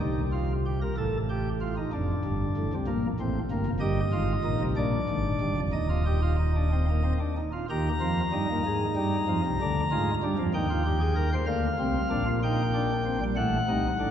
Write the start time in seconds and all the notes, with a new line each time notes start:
0.00 C2 C3 D#4
0.32 F4
0.66 G4
0.82 A#4
0.97 A1 A2 A4
1.30 G4
1.61 F4
1.77 D#4
1.93 F1 F2 D4
2.25 G1 G2
2.57 A1 A2
2.73 C2 C3
2.87 A#1 A#2 A#3
3.20 A1 A2 C4
3.51 G1 G2 A#3
3.66 F1 F2
3.80 G1 G2 G4 D#5
4.12 G#1 G#2 F4
4.44 A#1 A#2 D#4
4.60 C2 C3
4.76 A#1 A#2 D4 D5
5.09 G#1 G#2
5.41 G1 G2
5.57 F1 F2
5.73 D#1 D#2 D#4 D#5
5.89 F4
6.06 G4
6.22 F4
6.39 D#4
6.56 D4
6.72 C4
6.90 A#3
7.04 C4
7.20 D4
7.37 D#4
7.53 F4
7.70 D#2 D#3 G4 A#5
8.01 F2 F3 F4
8.32 G2 G3 D#4
8.50 A#3
8.66 G#2 G#3
8.96 G2 G3
9.28 F2 F3
9.46 C2 C3
9.61 D2 D3 D4
9.91 G#2 G#3 F4
10.23 G2 G3 D4
10.38 F2 F3
10.54 D#2 D#3 D#4 G5
10.70 F4
10.86 G4
11.01 G#4
11.16 A#4
11.33 C5
11.47 D2 D3 A#3 F5
11.79 C2 C3 C4
12.09 A#1 A#2 D4
12.26 F4
12.43 D#4 G5
12.74 D4
13.05 C4
13.21 G3
13.36 A1 A2 A3 F#5
13.68 C2 C3 D#4
13.99 A1 A2 D4